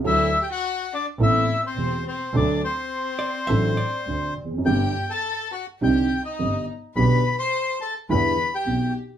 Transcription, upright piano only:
\new Staff \with { instrumentName = "Upright piano" } { \clef bass \time 4/4 \key g \major \tempo 4 = 104 <d, d fis a d' a'>8 r4. <a,, a, e b c' a'>8 r8 <e,, e,>8 r8 | <d, d fis a d' a'>8 r4. <a,, a, fis a d' a'>8 r8 <d, d>8 r32 e,32 f,32 fis,32 | <g,, g, d g b g'>8 r4. <c, c d g c' ees'>8 r8 <g,, g,>8 r8 | <b,, b, d g b g'>8 r4. <e, d e g b e'>8 r8 <b,, b,>8 r8 | }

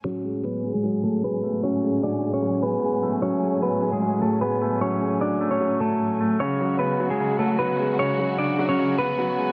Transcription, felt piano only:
\new Staff \with { instrumentName = "Felt piano" } { \clef bass \time 4/4 \key fis \minor \tempo 4 = 151 fis8 gis8 fis8 gis8 fis8 gis8 gis8 a8 | fis8 gis8 fis8 gis8 fis8 gis8 gis8 a8 | fis8 gis8 fis8 gis8 fis8 gis8 gis8 a8 | fis8 gis8 fis8 a8 fis4. a8 |
cis8 fis8 cis8 fis8 cis8 fis8 fis8 gis8 | cis8 fis8 cis8 fis8 cis8 fis8 fis8 gis8 | }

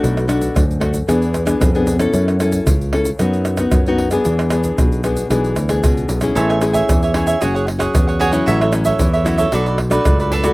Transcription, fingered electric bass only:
\new Staff \with { instrumentName = "Fingered electric bass" } { \clef bass \time 4/4 \key a \major \tempo 4 = 114 b,,4 d,4 e,4 f,4 | fis,4 cis,4 fis,4 fis,4 | e,4 b,,4 b,,8 d,8 cis,8 b,,8 | a,,4 e,4 fis,,4 e,4 |
a,,4 e,4 b,,4 cis,4 | }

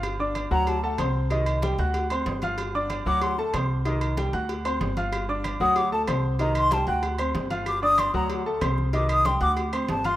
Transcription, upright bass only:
\new Staff \with { instrumentName = "Upright bass" } { \clef bass \time 4/4 \key d \phrygian \tempo 4 = 189 g,,4. d,4. c,4~ | c,4. d,4. g,,4~ | g,,4. d,4. c,4~ | c,4. d,4. g,,4~ |
g,,4. d,4. c,4~ | c,4. d,4. g,,4~ | g,,4. d,4. c,4~ | c,4. d,4. g,,4 | }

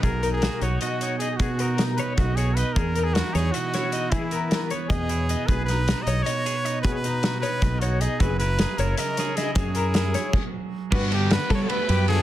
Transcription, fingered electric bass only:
\new Staff \with { instrumentName = "Fingered electric bass" } { \clef bass \time 7/8 \key b \major \tempo 4 = 155 b,,4. b,,8 r4. | b,2 b,,4. | e,4. e,8 r4. | e2 e,4. |
b,,4. b,,8 r4. | b,2 b,,4. | fis,,4. fis,,8 r4. | fis,2 r4. |
g,4. g8 r8 fis,4 | }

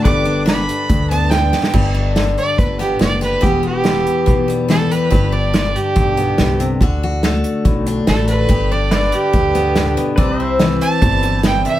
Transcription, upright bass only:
\new Staff \with { instrumentName = "Upright bass" } { \clef bass \time 4/4 \key g \major \tempo 4 = 142 g,,2 d,2 | g,,2 g,,4 fis,,4 | e,,2 b,,2 | g,,2 b,,4 c,4 |
d,2 b,,4 a,,4 | g,,2 d,2 | c,2 g,,2 | }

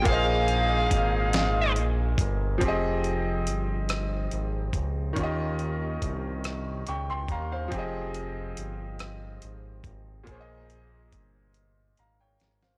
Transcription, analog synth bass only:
\new Staff \with { instrumentName = "Analog synth bass" } { \clef bass \time 6/8 \key f \minor \tempo 4. = 47 bes,,4 aes,,4 bes,,8 g,,8 | f,,4 g,,4 aes,,8 des,8 | ees,4 c,4 des,8 ees,8 | f,,4 g,,4 aes,,8 aes,,8 |
bes,,4 g,,4 aes,,8 aes,,8 | }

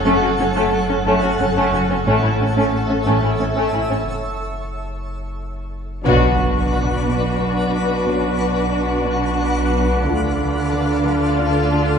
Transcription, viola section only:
\new Staff \with { instrumentName = "Viola section" } { \time 3/4 \tempo 4 = 90 des'16 des'16 des'16 des'16 r16 des'16 des'16 des'16 des'16 des'16 des'16 des'16 | cis'16 cis'16 cis'16 cis'16 r16 cis'16 cis'16 cis'16 cis'16 cis'16 cis'16 cis'16 | r2. | d'2.~ |
d'2. | d'2. | }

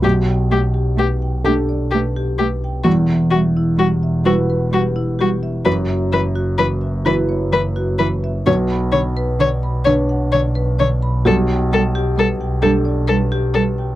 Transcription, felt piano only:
\new Staff \with { instrumentName = "Felt piano" } { \time 6/8 \key g \lydian \tempo 4. = 43 b,,4. <d' a'>4. | e,4. <fis' b'>4. | fis,4. <e' b'>4. | b,,4. <d' cis''>4. |
b,,4. <d' a'>4. | }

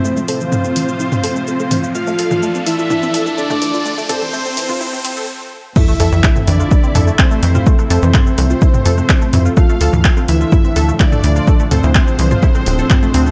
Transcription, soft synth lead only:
\new Staff \with { instrumentName = "Soft synth lead" } { \time 4/4 \key f \lydian \tempo 4 = 126 c'8 c'2.~ c'8 | f'4. e'4. d'4~ | d'8 c'2~ c'8 r4 | e'4. d'4. c'4~ |
c'8 c'2.~ c'8 | f'4. e'4. d'4~ | d'8 c'2.~ c'8 | }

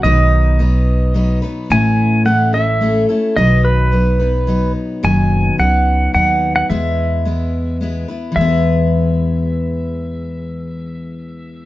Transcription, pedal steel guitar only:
\new Staff \with { instrumentName = "Pedal steel guitar" } { \time 3/4 \key e \major \tempo 4 = 108 dis''2~ dis''8 r8 | gis''4 fis''8 e''4 r8 | dis''8 b'2 r8 | gis''4 fis''4 fis''8. fis''16 |
e''2 r4 | e''2.~ | e''2. | }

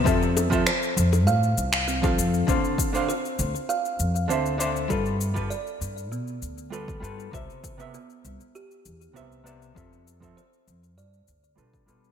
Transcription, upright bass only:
\new Staff \with { instrumentName = "Upright bass" } { \clef bass \time 4/4 \key f \lydian \tempo 4 = 99 f,4 r8 f,8 a,8 c,4 f,8 | d,8 r4 d,8 r8 f,8 d,4 | g,4 r8 g,8 b,8 d,4 g,8 | c,8 r4 c,8 r8 e,8 c,4 |
f,4 r8 f,8 g,8 d,8 b,8 b,8 | }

